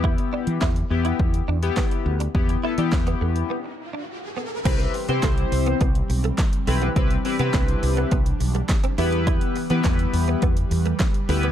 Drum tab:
CC |----------------|----------------|x---------------|----------------|
HH |-x-x-x-x-x-x-x-x|-x-x-x-x--------|xxoxxxoxxxoxxxox|xxoxxxoxxxoxxxox|
CP |----x-------x---|----x-----------|----x-------x---|----x-------x---|
SD |----o-------o---|----o-----------|----o-------o---|----o-------o---|
BD |o---o---o---o---|o---o-----------|o---o---o---o---|o---o---o---o---|

CC |----------------|
HH |xxoxxxoxxxoxxxox|
CP |----x-------x---|
SD |----o-------o---|
BD |o---o---o---o---|